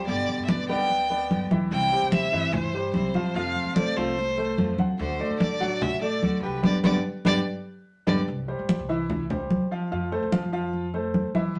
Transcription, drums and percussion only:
0.07 high conga soft
0.28 high conga soft
0.48 high conga medium
0.69 high conga soft
0.90 high conga soft
1.10 high conga soft
1.31 high conga medium
1.51 high conga medium
1.72 high conga soft
1.92 high conga soft
2.12 high conga loud
2.33 high conga soft
2.53 high conga soft
2.53 low conga medium
2.73 high conga soft
2.94 high conga medium
3.14 high conga medium
3.35 high conga soft
3.55 high conga soft
3.76 high conga medium
3.96 high conga soft
4.17 high conga soft
4.38 high conga soft
4.58 high conga medium
4.78 high conga medium
4.99 high conga soft
5.20 high conga soft
5.40 high conga loud
5.61 high conga soft
5.82 high conga soft
5.82 low conga medium
6.02 high conga soft
6.23 high conga medium
6.63 high conga loud
6.84 high conga loud
7.25 high conga medium
8.07 high conga loud
8.28 high conga soft
8.48 high conga soft
8.69 high conga loud
8.89 high conga soft
9.10 high conga soft
9.10 low conga medium
9.30 high conga soft
9.30 low conga medium
9.50 high conga medium
9.92 high conga soft
10.12 high conga soft
10.32 high conga medium
10.53 high conga soft
10.73 high conga soft
10.94 high conga soft
11.14 high conga medium
11.35 high conga medium
11.55 high conga soft

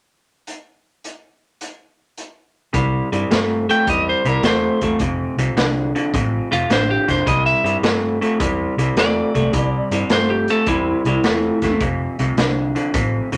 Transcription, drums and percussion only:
0.47 closed hi-hat medium
1.04 closed hi-hat medium
1.61 closed hi-hat medium
2.17 closed hi-hat soft
2.74 kick loud
2.74 closed hi-hat medium
3.13 closed hi-hat medium
3.31 snare loud
3.31 closed hi-hat medium
3.70 closed hi-hat medium
3.87 kick loud
3.87 closed hi-hat medium
4.25 closed hi-hat medium
4.43 snare loud
4.43 closed hi-hat medium
4.81 kick medium
4.81 closed hi-hat medium
4.99 kick loud
4.99 closed hi-hat medium
5.38 closed hi-hat medium
5.57 snare loud
5.57 closed hi-hat medium
5.96 closed hi-hat soft
6.14 kick loud
6.14 closed hi-hat medium
6.52 closed hi-hat soft
6.70 snare medium
6.70 closed hi-hat medium
7.08 kick medium
7.08 snare soft
7.08 closed hi-hat medium
7.27 kick loud
7.27 closed hi-hat medium
7.66 closed hi-hat medium
7.83 snare loud
7.83 closed hi-hat medium
8.22 closed hi-hat medium
8.40 kick loud
8.40 closed hi-hat medium
8.79 closed hi-hat medium
8.97 snare loud
8.97 closed hi-hat medium
9.35 kick medium
9.35 closed hi-hat medium
9.53 kick loud
9.53 closed hi-hat medium
9.91 closed hi-hat medium
10.10 snare loud
10.10 closed hi-hat medium
10.48 closed hi-hat medium
10.66 kick loud
10.66 closed hi-hat medium
11.05 closed hi-hat soft
11.24 snare medium
11.24 closed hi-hat medium
11.62 kick medium
11.62 snare soft
11.62 closed hi-hat medium
11.80 kick loud
11.80 closed hi-hat medium
12.19 closed hi-hat medium
12.37 snare loud
12.37 closed hi-hat medium
12.76 closed hi-hat medium
12.94 kick loud
12.94 closed hi-hat medium
13.32 closed hi-hat medium

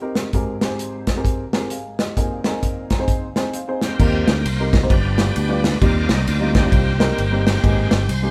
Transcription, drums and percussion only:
0.15 snare medium
0.15 closed hi-hat medium
0.33 kick medium
0.33 closed hi-hat medium
0.61 snare medium
0.61 closed hi-hat medium
0.79 closed hi-hat medium
1.07 kick medium
1.07 snare medium
1.07 closed hi-hat medium
1.25 kick medium
1.25 closed hi-hat medium
1.53 snare loud
1.53 closed hi-hat medium
1.70 closed hi-hat medium
1.99 snare medium
1.99 closed hi-hat medium
2.17 kick medium
2.17 closed hi-hat medium
2.44 snare loud
2.44 closed hi-hat medium
2.63 kick medium
2.63 closed hi-hat medium
2.90 kick medium
2.90 snare medium
2.90 closed hi-hat medium
3.08 kick medium
3.08 closed hi-hat medium
3.36 snare medium
3.36 closed hi-hat medium
3.54 closed hi-hat medium
3.82 snare medium
3.82 closed hi-hat medium
4.00 kick loud
4.00 crash medium
4.28 snare loud
4.28 ride medium
4.46 ride medium
4.73 kick loud
4.73 snare loud
4.73 ride medium
4.90 kick loud
4.90 ride medium
5.18 snare loud
5.18 ride medium
5.36 ride medium
5.64 snare loud
5.64 ride medium
5.82 kick loud
5.82 ride medium
6.09 snare loud
6.09 ride medium
6.27 ride medium
6.55 kick loud
6.55 snare loud
6.55 ride medium
6.72 kick loud
6.72 ride medium
7.00 snare loud
7.00 ride medium
7.18 ride medium
7.47 snare loud
7.47 ride medium
7.64 kick loud
7.64 ride medium
7.91 snare loud
7.91 ride medium
8.09 ride medium

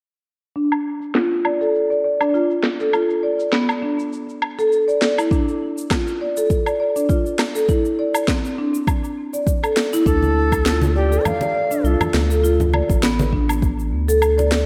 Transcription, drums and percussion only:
0.56 shaker soft
0.72 low woodblock medium
0.72 shaker soft
1.02 shaker medium
1.15 snare medium
1.15 shaker soft
1.32 shaker soft
1.45 low woodblock medium
1.61 shaker medium
1.75 shaker soft
1.91 shaker soft
2.21 low woodblock medium
2.21 shaker medium
2.34 shaker soft
2.50 shaker soft
2.63 snare medium
2.80 shaker medium
2.93 low woodblock medium
2.93 shaker medium
3.10 shaker soft
3.40 shaker medium
3.53 snare medium
3.53 shaker soft
3.69 low woodblock medium
3.69 shaker soft
3.99 shaker medium
4.13 shaker medium
4.29 shaker soft
4.42 low woodblock medium
4.59 shaker medium
4.72 shaker soft
4.89 shaker soft
5.02 snare medium
5.18 low woodblock medium
5.18 shaker medium
5.31 kick loud
5.31 shaker soft
5.49 shaker soft
5.78 shaker medium
5.91 kick loud
5.91 snare medium
5.91 low woodblock medium
5.91 shaker medium
6.07 shaker soft
6.37 shaker medium
6.50 kick medium
6.50 shaker medium
6.66 low woodblock medium
6.66 shaker soft
6.96 shaker medium
7.09 kick loud
7.09 shaker medium
7.26 shaker soft
7.39 snare medium
7.39 low woodblock medium
7.56 shaker medium
7.69 kick loud
7.69 shaker medium
7.85 shaker soft
8.15 low woodblock medium
8.15 shaker medium
8.28 kick loud
8.28 snare medium
8.28 shaker soft
8.45 shaker soft
8.74 shaker medium
8.87 kick loud
8.87 low woodblock medium
8.87 shaker medium
9.04 shaker soft
9.34 shaker medium
9.47 kick loud
9.47 shaker medium
9.64 low woodblock medium
9.64 shaker soft
9.77 snare medium
9.93 shaker medium
10.06 kick loud
10.06 shaker medium
10.22 high conga medium
10.22 shaker soft
10.52 kick medium
10.52 low woodblock medium
10.52 shaker medium
10.66 snare medium
10.66 shaker soft
10.82 high conga medium
10.82 shaker soft
11.12 shaker medium
11.25 low conga medium
11.25 low woodblock medium
11.25 shaker medium
11.41 muted conga medium
11.41 shaker soft
11.71 shaker medium
11.85 shaker soft
12.01 low conga medium
12.01 low woodblock medium
12.01 shaker soft
12.14 snare medium
12.14 high conga soft
12.31 shaker medium
12.45 shaker medium
12.60 low conga medium
12.60 shaker soft
12.73 high conga medium
12.73 low woodblock medium
12.90 kick loud
12.90 shaker medium
13.03 snare medium
13.03 shaker medium
13.19 muted conga soft
13.19 high conga medium
13.19 shaker soft
13.33 kick medium
13.49 low woodblock medium
13.49 shaker medium
13.62 kick loud
13.62 shaker medium
13.79 shaker soft
14.09 shaker medium
14.22 low woodblock medium
14.22 shaker medium
14.39 muted conga soft
14.39 shaker soft
14.52 snare medium

